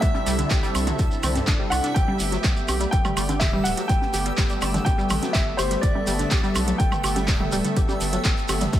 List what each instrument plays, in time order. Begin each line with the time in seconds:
Already playing: supersaw synth C3 C4 D4 E4, synth texture E5 E6
0.01 analog synth bass C2, synth pluck G3, supersaw synth A4, grand piano E5, kick, closed hi-hat, shekere
0.14 synth pluck G3, snare, high conga
0.26 analog synth bass C2, synth pluck G3, snare, closed hi-hat, open hi-hat, shekere
0.39 synth pluck D3, closed hi-hat, shekere
0.50 analog synth bass C2, synth pluck G4, kick, snare, clap, closed hi-hat, shekere
0.63 synth pluck G3, closed hi-hat, shekere
0.75 analog synth bass C2, closed hi-hat, open hi-hat, high conga, high woodblock, shekere
0.87 synth pluck F#3, closed hi-hat, mid tom, shekere
0.99 analog synth bass D2, kick, closed hi-hat, shekere
1.11 shekere
1.23 analog synth bass C2, synth pluck C4, closed hi-hat, open hi-hat, mid tom, high woodblock, shekere
1.35 synth pluck G2, snare, closed hi-hat, high conga, shekere
1.46 analog synth bass G1, synth pluck D4, kick, snare, clap, closed hi-hat, shekere
1.60 synth pluck G3
1.70 analog synth bass C2, synth pluck D4, grand piano F#5, closed hi-hat, open hi-hat, high woodblock, shekere
1.83 synth pluck D4, snare, closed hi-hat, shekere
1.94 analog synth bass G1, supersaw synth A3 B3 G4, synth pluck G4, grand piano G5, kick, closed hi-hat, shekere
2.08 synth pluck G3, high conga
2.19 analog synth bass G1, snare, closed hi-hat, open hi-hat, shekere
2.32 synth pluck F#3, snare, closed hi-hat, shekere
2.44 analog synth bass B1, kick, snare, clap, closed hi-hat, shekere
2.56 shekere
2.68 analog synth bass B1, synth pluck G4, closed hi-hat, open hi-hat, high conga, high woodblock, shekere
2.80 synth pluck G3, closed hi-hat, shekere
2.91 analog synth bass G1, synth pluck G3, grand piano G5, kick, closed hi-hat, shekere
3.05 synth pluck G3, mid tom, high woodblock, shekere
3.17 analog synth bass G1, synth pluck G3, closed hi-hat, open hi-hat, high woodblock, shekere
3.29 synth pluck D3, closed hi-hat, high conga, shekere
3.40 analog synth bass D1, synth pluck G4, grand piano E5, kick, snare, clap, closed hi-hat, mid tom, shekere
3.53 synth pluck G3, mid tom
3.64 analog synth bass D1, grand piano F#5, closed hi-hat, open hi-hat, shekere
3.77 synth pluck F#3, closed hi-hat, shekere
3.88 analog synth bass G1, grand piano G5, kick, closed hi-hat, shekere
4.02 snare, high conga
4.13 analog synth bass G1, synth pluck G4, snare, closed hi-hat, open hi-hat, shekere
4.25 synth pluck G3, closed hi-hat, shekere
4.37 analog synth bass G1, synth pluck G3, kick, snare, clap, closed hi-hat, shekere
4.49 synth pluck G3, closed hi-hat, shekere
4.62 analog synth bass G1, synth pluck G3, closed hi-hat, open hi-hat, high conga, high woodblock, shekere
4.74 synth pluck D3, closed hi-hat, mid tom, shekere
4.85 analog synth bass A1, synth pluck G4, grand piano G5, kick, closed hi-hat, shekere
4.98 synth pluck G3, shekere
5.10 analog synth bass A1, closed hi-hat, open hi-hat, mid tom, high woodblock, shekere
5.23 synth pluck F#3, snare, closed hi-hat, high conga, shekere
5.33 analog synth bass G1, grand piano E5, kick, snare, clap, closed hi-hat, shekere
5.57 analog synth bass G1, synth pluck G4, grand piano C5, closed hi-hat, open hi-hat, high woodblock, shekere
5.71 synth pluck G3, snare, closed hi-hat, shekere
5.81 analog synth bass G1, synth pluck G3, supersaw synth A4, grand piano D5, kick, closed hi-hat, shekere
5.95 synth pluck G3, high conga
6.07 analog synth bass G1, synth pluck G3, snare, closed hi-hat, open hi-hat, shekere
6.19 synth pluck D3, snare, closed hi-hat, shekere
6.31 analog synth bass B1, synth pluck G4, kick, snare, clap, closed hi-hat, shekere
6.44 synth pluck G3, shekere
6.55 analog synth bass B1, closed hi-hat, open hi-hat, high conga, high woodblock, shekere
6.68 synth pluck F#3, closed hi-hat, shekere
6.78 analog synth bass G1, grand piano G5, kick, closed hi-hat, shekere
6.92 mid tom, high woodblock, shekere
7.03 analog synth bass G1, synth pluck G4, closed hi-hat, open hi-hat, high woodblock, shekere
7.16 synth pluck G3, closed hi-hat, high conga, shekere
7.28 analog synth bass D1, synth pluck G3, kick, snare, clap, closed hi-hat, mid tom, shekere
7.40 synth pluck G3, mid tom
7.52 analog synth bass D1, synth pluck G3, open hi-hat, shekere
7.64 synth pluck D3, closed hi-hat, shekere
7.77 analog synth bass G1, synth pluck G4, kick, closed hi-hat, shekere
7.89 synth pluck G3, snare, high conga, shekere
8.00 analog synth bass G1, snare, closed hi-hat, open hi-hat, shekere
8.13 synth pluck F#3, closed hi-hat, shekere
8.25 analog synth bass G1, kick, snare, clap, closed hi-hat, shekere
8.37 closed hi-hat, shekere
8.48 analog synth bass G1, synth pluck G4, snare, closed hi-hat, open hi-hat, high conga, high woodblock, shekere
8.61 synth pluck G3, snare, closed hi-hat, mid tom, shekere
8.73 analog synth bass A1, synth pluck G3, kick, snare, closed hi-hat, shekere